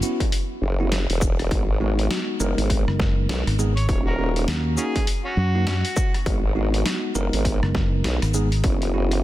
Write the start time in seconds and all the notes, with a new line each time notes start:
0.03 B3 C#4 E4 F#4, shaker
0.20 kick, closed hi-hat
0.32 closed hi-hat
0.62 F#1
0.80 B3 C#4 E4 F#4
0.92 snare, closed hi-hat
1.09 E1, closed hi-hat
1.21 kick, shaker
1.39 cross-stick, closed hi-hat
1.51 G#1 G#3 B3 D#4 F#4, kick, closed hi-hat
1.81 G#3 B3 D#4 F#4
1.99 closed hi-hat
2.11 snare, closed hi-hat
2.40 F#1 G#3 B3 D#4 A#4, shaker
2.58 G#1, closed hi-hat
2.70 kick, closed hi-hat
2.88 F#1, cross-stick
3.00 kick, snare
3.29 B1, snare, closed hi-hat
3.47 G#1, cross-stick, closed hi-hat
3.59 G#3 B3 D#4 G#4, shaker
3.76 C#5, closed hi-hat
3.88 D#1 A#3 C#4 D#4 F#4 C#5, kick, closed hi-hat
4.06 F#4 A#4
4.19 A#3 C#4 D#4 F#4
4.36 closed hi-hat
4.48 D#2, snare, closed hi-hat
4.78 A#3 C#4 D#4 F#4 G#4, shaker
4.96 kick, closed hi-hat
5.07 closed hi-hat
5.25 C#4 F#4
5.37 F#2
5.55 A#3 C#4 D#4 F#4
5.67 C#4 F#4, snare, closed hi-hat
5.85 closed hi-hat
5.97 kick, shaker
6.14 cross-stick, closed hi-hat
6.26 G#1 G#3 B3 D#4 F#4, kick, closed hi-hat
6.56 G#3 B3 D#4 F#4
6.74 closed hi-hat
6.86 snare, closed hi-hat
7.15 F#1 G#3 B3 D#4 A#4, shaker
7.33 G#1, closed hi-hat
7.45 kick, closed hi-hat
7.63 F#1, cross-stick
7.75 kick, snare
8.04 B1, snare, closed hi-hat
8.22 G#1, cross-stick, closed hi-hat
8.34 G#3 B3 D#4 G#4, shaker
8.52 closed hi-hat
8.64 F#1 B3 C#4 E4 F#4, kick, closed hi-hat
8.82 closed hi-hat
8.94 B3 C#4 E4 F#4
9.11 closed hi-hat